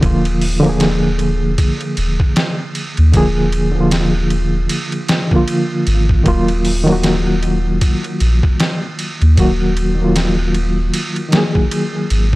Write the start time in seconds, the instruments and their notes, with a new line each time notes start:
0.01 sub bass D#1, reed electric piano D3 F3 A#3, kick, ride
0.06 reed electric piano F4
0.25 ride
0.41 open hi-hat
0.60 reed electric piano D3 F3
0.64 reed electric piano A#3, ride
0.69 reed electric piano G#4
0.80 snare, ride
1.19 ride
1.58 kick, ride
1.81 ride
1.97 sub bass D#1, ride
2.20 kick
2.36 snare, ride
2.75 ride
2.97 sub bass D#2, ride
3.12 sub bass D#1, reed electric piano D3 F3 A#3, kick, ride
3.17 reed electric piano G#4
3.52 ride
3.72 reed electric piano D3 F3
3.78 reed electric piano A#3 F4
3.91 snare, ride
4.30 ride
4.69 ride
4.92 ride
5.09 snare, ride
5.27 reed electric piano D3 F3
5.31 reed electric piano A#3, kick
5.36 reed electric piano F4
5.48 ride
5.87 sub bass G#1, ride
6.09 kick
6.24 sub bass D#1, reed electric piano D#3 F#3 A#3, kick, ride
6.28 reed electric piano F4
6.48 ride
6.65 open hi-hat
6.83 reed electric piano D#3 F#3, ride
6.89 reed electric piano A#3 F#4
7.03 snare, ride
7.43 ride
7.81 kick, ride
8.04 ride
8.20 sub bass A#1, ride
8.43 kick
8.60 snare, ride
8.99 ride
9.22 sub bass D#2, ride
9.36 sub bass D#1, reed electric piano D#3 F#3 A#3, kick, ride
9.40 reed electric piano F#4
9.77 ride
9.95 reed electric piano D#3 F#3
10.01 reed electric piano A#3 F4
10.16 snare, ride
10.54 ride
10.94 ride
11.16 ride
11.28 reed electric piano D#3 F#3, ride
11.33 reed electric piano A#3, snare
11.37 reed electric piano G#4
11.55 kick
11.71 ride
12.10 sub bass G#1, ride